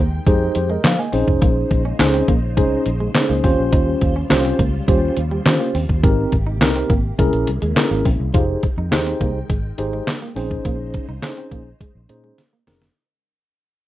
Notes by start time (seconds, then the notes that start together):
Already playing: D#2 D#3 G#3 G5
0.27 F2 G#3 D#4 G4 G#4 C5, kick, closed hi-hat
0.55 F2 G4 C5, muted clean electric guitar stroke, closed hi-hat
0.70 G#3 A#4 D#5
0.84 F3 C5 F5, snare, clap, closed hi-hat
0.98 A#3 D#5 G#5
1.12 A#1 C#3 G#3 C4 C#4 D#4 G#4 C5, open hi-hat
1.28 F1, kick
1.42 A#1 A#3, kick, closed hi-hat
1.71 A#1, muted clean electric guitar stroke, kick, closed hi-hat
1.85 C#4
1.99 C#2 C#4 D#4 G#4 C5, muted clean electric guitar stroke, snare, clap, closed hi-hat
2.14 C4
2.28 A#1 A#3, kick, closed hi-hat
2.57 C2 G#3 C#4 D#4 G#4 C5, kick, closed hi-hat
2.86 A#1, muted clean electric guitar stroke, closed hi-hat
3.00 G#3
3.15 C#4 D#4 G#4 C5, muted clean electric guitar stroke, snare, clap, closed hi-hat
3.29 C#2 A#3
3.44 D#2 C#3 G3 C4 C#4 F4 G4 C5, kick, open hi-hat
3.59 A#1
3.73 D#2 D#4, kick, closed hi-hat
4.01 D#2, muted clean electric guitar stroke, kick, closed hi-hat
4.16 C#4
4.30 C2 C#4 F4 G4 C5, snare, clap, closed hi-hat
4.45 C4
4.59 C#2 A#3, kick, closed hi-hat
4.88 D#2 G3 C#4 F4 G4 C5, kick, closed hi-hat
5.17 D#2, muted clean electric guitar stroke, closed hi-hat
5.31 G3
5.45 D#3 C#4 F4 G4 C5, muted clean electric guitar stroke, snare, clap, closed hi-hat
5.60 A#3
5.75 D#2 C4, open hi-hat
5.89 D#2, kick
6.03 G#1 C3 G#3 A#3 C4 D#4 G4 A#4, kick, closed hi-hat
6.32 G#1, muted clean electric guitar stroke, kick, closed hi-hat
6.47 D#4
6.61 C2 C4 D#4 G4 A#4, muted clean electric guitar stroke, snare, clap, closed hi-hat
6.76 C4
6.90 G#1 A#3, kick, closed hi-hat
7.18 C2 C#3 G#3 C#4 E4 G#4 A#4, kick, closed hi-hat
7.33 A#1, closed hi-hat
7.47 C2, muted clean electric guitar stroke, closed hi-hat
7.62 D#2 G#3, closed hi-hat
7.76 C#4 E4 G#4 A#4, muted clean electric guitar stroke, snare, clap, closed hi-hat
7.91 G#1 A#3
8.05 A#1 C4, kick, open hi-hat
8.20 C2
8.34 F1 D#3 G#3 D#4 F4 G4 G#4 C5 G5, kick, closed hi-hat
8.63 muted clean electric guitar stroke, kick, closed hi-hat
8.78 F2 D#4
8.91 D#2 D#4 G4 G#4 C5, snare, clap, closed hi-hat
9.07 C4
9.21 C2 A#3, kick, closed hi-hat
9.50 G#1 G#3, kick, closed hi-hat
9.78 G#1 D#4 G4 G#4 C5, muted clean electric guitar stroke, closed hi-hat
9.93 G#3
10.07 muted clean electric guitar stroke, snare, clap, closed hi-hat
10.22 A#3
10.36 A#1 C#3 C4 C#4 D#4 G#4 C5, open hi-hat
10.51 kick
10.65 A#1 A#3, kick, closed hi-hat
10.94 muted clean electric guitar stroke, kick, closed hi-hat
11.09 C2 D#4
11.22 C#4 D#4 G#4 C5, snare, clap, closed hi-hat
11.38 C4
11.52 A#1 A#3, kick, closed hi-hat
11.81 G#3, kick, closed hi-hat
11.95 A#1
12.09 A#2 C#4 D#4 G#4 C5, muted clean electric guitar stroke, closed hi-hat
12.24 G#3
12.38 muted clean electric guitar stroke, snare, closed hi-hat
12.53 A#3
12.67 F1 C4 C#4 D#4 G#4 A#4, snare, open hi-hat
12.82 snare